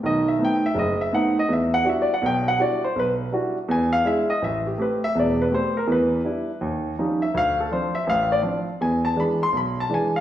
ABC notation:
X:1
M:4/4
L:1/8
Q:"Swing" 1/4=164
K:Em
V:1 name="Grand piano"
^d e g e d e f d | e f (3e d f g f d c | B z3 ^g =f e ^d | [K:Am] e G B e d B c _B |
[_B=B]4 z3 e | f A c e [ef] d z2 | ^g a b c' b a g f |]
V:2 name="Grand piano"
[B,,,^D,]2 [A,B,C^D] z F,,,2 [A,B,CD] z | E,,2 [G,DEF] z [B,,,B,,]2 [G,DEF] z | B,,,2 [G,DEF] z E,,2 [^G,DE] z | [K:Am] A,,,2 [A,CG] z [E,,,E,,]2 [A,CG] z |
[E,,E,]2 [G,DE] z ^D,,2 [^E,G,^C^D] z | D,,2 [F,CD] z [A,,,A,,]2 [F,CD] z | E,,2 [E,^G,D] z B,,,2 [E,G,D] z |]